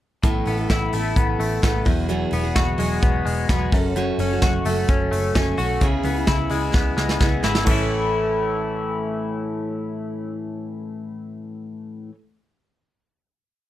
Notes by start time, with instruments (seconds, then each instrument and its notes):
0.23 picked electric bass A1, clean electric guitar A2, steel-string acoustic guitar A3 B3 E4 A4, kick, closed hi-hat
0.46 picked electric bass A1, steel-string acoustic guitar A3 B3 E4 A4, clean electric guitar B3, open hi-hat
0.57 steel-string acoustic guitar B3 E4 A4
0.70 picked electric bass A1, clean electric guitar E4, kick, snare, closed hi-hat
0.93 picked electric bass A1, steel-string acoustic guitar A3 B3 E4 A4, clean electric guitar A3, open hi-hat
1.16 picked electric bass A1, clean electric guitar B3, kick, closed hi-hat
1.39 picked electric bass A1, clean electric guitar A3, open hi-hat
1.62 picked electric bass A1, steel-string acoustic guitar A3 B3 E4 A4, clean electric guitar B3, kick, snare, closed hi-hat
1.85 picked electric bass E1, clean electric guitar E2, steel-string acoustic guitar F#3 B3 F#4 G#4, kick, open hi-hat
2.09 clean electric guitar E2, steel-string acoustic guitar E3 F#3 B3 F#4 G#4, closed hi-hat
2.31 picked electric bass E1, steel-string acoustic guitar F#3 B3 F#4 G#4, clean electric guitar B3, open hi-hat
2.43 steel-string acoustic guitar B3 F#4 G#4
2.56 picked electric bass E1, clean electric guitar F#4, kick, snare, closed hi-hat
2.78 picked electric bass E1, steel-string acoustic guitar F#3 B3 F#4 G#4, clean electric guitar G#3, open hi-hat
3.02 picked electric bass E1, clean electric guitar B3, kick, closed hi-hat
3.25 picked electric bass E1, clean electric guitar G#3, open hi-hat
3.49 picked electric bass E1, steel-string acoustic guitar F#3 B3 F#4 G#4, clean electric guitar B3, kick, snare, closed hi-hat
3.72 picked electric bass F#1, clean electric guitar F#2, steel-string acoustic guitar F#3 C#4 F#4 A4, kick, open hi-hat
3.96 clean electric guitar F#2, steel-string acoustic guitar F#3 C#4 F#4 A4, closed hi-hat
4.18 picked electric bass F#1, steel-string acoustic guitar F#3 C#4 F#4 A4, clean electric guitar C#4, open hi-hat
4.31 steel-string acoustic guitar C#4 F#4 A4
4.42 picked electric bass F#1, clean electric guitar F#4, kick, snare, closed hi-hat
4.65 picked electric bass F#1, steel-string acoustic guitar F#3 C#4 F#4, clean electric guitar A3, open hi-hat
4.69 steel-string acoustic guitar A4
4.89 picked electric bass F#1, clean electric guitar C#4, kick, closed hi-hat
5.11 picked electric bass F#1, clean electric guitar A3, open hi-hat
5.35 picked electric bass F#1, steel-string acoustic guitar F#3 C#4 F#4 A4, clean electric guitar C#4, kick, snare, closed hi-hat
5.58 picked electric bass B1, steel-string acoustic guitar F#3 C#4 F#4 A4, clean electric guitar F#4, open hi-hat
5.81 picked electric bass C#2, steel-string acoustic guitar C#3 G#3 B3 E4 G#4, clean electric guitar C#3, kick, closed hi-hat
6.03 picked electric bass C#2, steel-string acoustic guitar G#3 B3 E4 G#4, clean electric guitar B3, open hi-hat
6.16 steel-string acoustic guitar B3 E4 G#4
6.27 picked electric bass C#2, clean electric guitar E4, kick, snare, closed hi-hat
6.50 picked electric bass C#2, steel-string acoustic guitar G#3 B3 E4 G#4, clean electric guitar G#3, open hi-hat
6.74 picked electric bass C#2, clean electric guitar B3, kick, snare
6.97 picked electric bass C#2, clean electric guitar G#3, snare
7.09 snare
7.19 picked electric bass C#2, steel-string acoustic guitar G#3 B3 E4 G#4, clean electric guitar B3, kick, snare
7.43 picked electric bass G#1, steel-string acoustic guitar G#3 B3 E4 G#4, clean electric guitar E4, snare
7.55 snare
7.63 picked electric bass A1, clean electric guitar A2 E3, steel-string acoustic guitar A3, kick, crash
7.68 clean electric guitar A3 C#4 E4, steel-string acoustic guitar C#4
7.73 steel-string acoustic guitar E4
7.77 steel-string acoustic guitar A4